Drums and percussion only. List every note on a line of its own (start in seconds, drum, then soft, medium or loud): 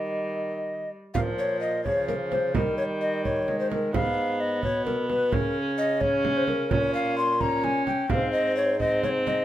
1.15 frame drum medium
1.86 frame drum medium
2.09 frame drum medium
2.32 frame drum medium
2.55 frame drum medium
3.25 frame drum medium
3.48 frame drum medium
3.72 frame drum medium
3.94 frame drum medium
4.63 frame drum medium
4.87 frame drum medium
5.10 frame drum soft
5.32 frame drum medium
6.01 frame drum medium
6.25 frame drum medium
6.48 frame drum medium
6.71 frame drum medium
7.41 frame drum medium
7.64 frame drum medium
7.87 frame drum medium
8.10 frame drum medium
8.80 frame drum medium
9.03 frame drum medium
9.27 frame drum medium